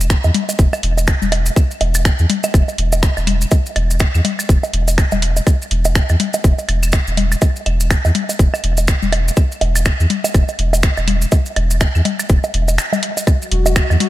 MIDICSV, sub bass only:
0, 0, Header, 1, 2, 480
1, 0, Start_track
1, 0, Tempo, 487805
1, 1539, Time_signature, 4, 2, 24, 8
1, 13866, End_track
2, 0, Start_track
2, 0, Title_t, "Sub bass"
2, 0, Program_c, 0, 38
2, 0, Note_on_c, 0, 28, 96
2, 151, Note_off_c, 0, 28, 0
2, 239, Note_on_c, 0, 40, 90
2, 300, Note_off_c, 0, 40, 0
2, 579, Note_on_c, 0, 28, 81
2, 664, Note_off_c, 0, 28, 0
2, 819, Note_on_c, 0, 28, 78
2, 1111, Note_off_c, 0, 28, 0
2, 1199, Note_on_c, 0, 28, 86
2, 1476, Note_off_c, 0, 28, 0
2, 1779, Note_on_c, 0, 28, 94
2, 2071, Note_off_c, 0, 28, 0
2, 2159, Note_on_c, 0, 40, 88
2, 2220, Note_off_c, 0, 40, 0
2, 2499, Note_on_c, 0, 28, 78
2, 2584, Note_off_c, 0, 28, 0
2, 2738, Note_on_c, 0, 28, 81
2, 3031, Note_off_c, 0, 28, 0
2, 3119, Note_on_c, 0, 28, 86
2, 3396, Note_off_c, 0, 28, 0
2, 3699, Note_on_c, 0, 28, 94
2, 3991, Note_off_c, 0, 28, 0
2, 4079, Note_on_c, 0, 40, 86
2, 4140, Note_off_c, 0, 40, 0
2, 4419, Note_on_c, 0, 28, 80
2, 4504, Note_off_c, 0, 28, 0
2, 4658, Note_on_c, 0, 28, 87
2, 4951, Note_off_c, 0, 28, 0
2, 5039, Note_on_c, 0, 28, 79
2, 5316, Note_off_c, 0, 28, 0
2, 5619, Note_on_c, 0, 28, 96
2, 5911, Note_off_c, 0, 28, 0
2, 5999, Note_on_c, 0, 40, 86
2, 6060, Note_off_c, 0, 40, 0
2, 6339, Note_on_c, 0, 28, 77
2, 6424, Note_off_c, 0, 28, 0
2, 6579, Note_on_c, 0, 28, 77
2, 6871, Note_off_c, 0, 28, 0
2, 6959, Note_on_c, 0, 28, 86
2, 7236, Note_off_c, 0, 28, 0
2, 7539, Note_on_c, 0, 28, 92
2, 7831, Note_off_c, 0, 28, 0
2, 7920, Note_on_c, 0, 40, 87
2, 7980, Note_off_c, 0, 40, 0
2, 8259, Note_on_c, 0, 28, 80
2, 8344, Note_off_c, 0, 28, 0
2, 8499, Note_on_c, 0, 28, 79
2, 8791, Note_off_c, 0, 28, 0
2, 8880, Note_on_c, 0, 28, 85
2, 9156, Note_off_c, 0, 28, 0
2, 9459, Note_on_c, 0, 28, 96
2, 9751, Note_off_c, 0, 28, 0
2, 9839, Note_on_c, 0, 40, 91
2, 9900, Note_off_c, 0, 40, 0
2, 10179, Note_on_c, 0, 28, 78
2, 10264, Note_off_c, 0, 28, 0
2, 10418, Note_on_c, 0, 28, 79
2, 10711, Note_off_c, 0, 28, 0
2, 10799, Note_on_c, 0, 28, 84
2, 11076, Note_off_c, 0, 28, 0
2, 11378, Note_on_c, 0, 28, 99
2, 11671, Note_off_c, 0, 28, 0
2, 11759, Note_on_c, 0, 40, 88
2, 11820, Note_off_c, 0, 40, 0
2, 12099, Note_on_c, 0, 28, 79
2, 12184, Note_off_c, 0, 28, 0
2, 12339, Note_on_c, 0, 28, 87
2, 12579, Note_off_c, 0, 28, 0
2, 13299, Note_on_c, 0, 28, 94
2, 13591, Note_off_c, 0, 28, 0
2, 13680, Note_on_c, 0, 40, 91
2, 13740, Note_off_c, 0, 40, 0
2, 13866, End_track
0, 0, End_of_file